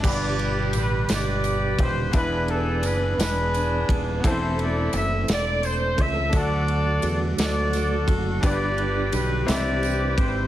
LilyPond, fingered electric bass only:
\new Staff \with { instrumentName = "Fingered electric bass" } { \clef bass \time 6/8 \key g \major \tempo 4. = 57 g,,4 a,,8 g,,4 ees,,8 | e,,4 fis,,8 e,,4 ees,,8 | e,,4 fis,,8 e,,4 cis,8 | d,4 e,8 d,4 fis,,8 |
g,,4 b,,8 c,4 aes,,8 | }